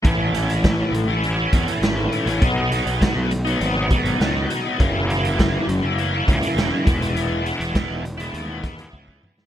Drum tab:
HH |x-xxx-x-x-xxx-xx|x-xxx-xxx-xxx-x-|x-xxx-x-x-xxx-xx|x-xxx-xxx-xx----|
SD |----o-------o---|----o-------o---|----o-------o---|----o-----o----o|
T2 |----------------|----------------|----------------|--------------o-|
BD |o---o-----o-----|o---o-----o-----|o---o-----o---o-|----o-----o-oo--|